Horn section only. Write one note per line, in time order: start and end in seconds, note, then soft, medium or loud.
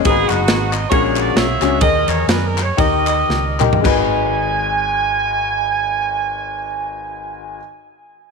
0.05 0.29 B3 medium
0.05 0.29 D#4 medium
0.05 0.28 G#4 loud
0.28 0.88 B3 medium
0.28 0.88 D#4 medium
0.28 0.72 F#4 loud
0.71 0.91 D#5 loud
0.90 1.77 F#4 medium
0.90 1.35 G#4 medium
0.90 1.03 C#5 loud
1.04 1.19 C#5 loud
1.20 1.35 D5 loud
1.35 1.79 G#4 medium
1.35 1.79 C#5 medium
1.35 1.81 E5 loud
1.81 2.75 G#4 medium
1.81 2.45 A#4 medium
1.81 2.08 D#5 loud
2.08 2.28 C#5 loud
2.28 2.43 B4 medium
2.46 2.62 A#4 loud
2.62 2.78 C#5 loud
2.79 3.82 G4 medium
2.79 3.82 A#4 medium
2.79 3.61 D#5 loud
3.86 7.61 G#5 loud